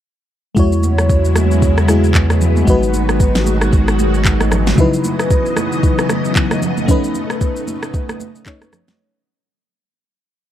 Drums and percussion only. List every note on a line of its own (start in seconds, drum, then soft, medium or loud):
0.57 kick loud
0.57 low conga medium
0.57 shaker medium
0.72 shaker medium
0.83 high conga medium
0.83 shaker medium
0.98 cross-stick medium
0.98 shaker soft
1.09 kick loud
1.09 shaker medium
1.25 shaker medium
1.36 cross-stick medium
1.36 high conga medium
1.36 shaker medium
1.51 shaker medium
1.62 kick loud
1.62 shaker medium
1.78 cross-stick medium
1.78 shaker soft
1.88 cross-stick medium
1.88 high conga medium
1.88 shaker medium
2.04 shaker soft
2.15 kick medium
2.15 clap medium
2.15 shaker medium
2.30 cross-stick medium
2.30 high conga medium
2.30 shaker soft
2.41 low conga medium
2.41 shaker medium
2.56 high conga medium
2.56 shaker medium
2.67 kick loud
2.67 low conga medium
2.67 shaker medium
2.83 shaker medium
2.94 high conga medium
2.94 shaker medium
3.09 cross-stick medium
3.09 shaker soft
3.20 kick loud
3.20 shaker medium
3.35 snare medium
3.35 shaker medium
3.46 high conga medium
3.46 shaker medium
3.61 cross-stick medium
3.61 shaker medium
3.73 kick loud
3.73 shaker medium
3.88 cross-stick medium
3.88 shaker soft
3.99 high conga medium
3.99 shaker loud
4.14 shaker medium
4.25 kick medium
4.25 clap medium
4.25 shaker medium
4.41 cross-stick medium
4.41 high conga medium
4.41 shaker soft
4.52 cross-stick medium
4.52 low conga medium
4.52 shaker medium
4.67 snare medium
4.67 high conga medium
4.67 shaker medium
4.78 kick loud
4.78 low conga medium
4.78 shaker medium
4.93 shaker medium
5.04 high conga medium
5.04 shaker medium
5.19 cross-stick medium
5.19 shaker soft
5.30 kick loud
5.30 shaker medium
5.46 shaker medium
5.57 cross-stick medium
5.57 high conga medium
5.57 shaker medium
5.72 shaker medium
5.83 kick loud
5.83 shaker medium
5.99 cross-stick medium
5.99 shaker soft
6.09 cross-stick medium
6.09 high conga medium
6.09 shaker loud
6.25 shaker medium
6.36 kick medium
6.36 clap medium
6.36 shaker medium
6.51 cross-stick medium
6.51 high conga medium
6.51 shaker soft
6.62 low conga medium
6.62 shaker medium
6.77 high conga medium
6.77 shaker medium
6.88 kick loud
6.88 low conga medium
6.88 shaker medium
7.04 shaker medium
7.15 high conga medium
7.15 shaker medium
7.30 cross-stick medium
7.30 shaker soft
7.41 kick loud
7.41 shaker medium
7.56 shaker medium
7.67 high conga medium
7.67 shaker medium
7.83 cross-stick loud
7.83 shaker medium
7.94 kick loud
7.94 shaker medium
8.09 cross-stick medium
8.09 high conga soft
8.09 shaker soft
8.20 high conga medium
8.20 shaker loud
8.35 shaker soft
8.46 kick medium
8.46 clap medium
8.46 shaker medium
8.62 cross-stick medium
8.62 high conga medium
8.62 shaker soft
8.73 cross-stick medium
8.73 low conga medium
8.73 shaker medium
8.88 snare medium
8.88 high conga medium
8.88 shaker medium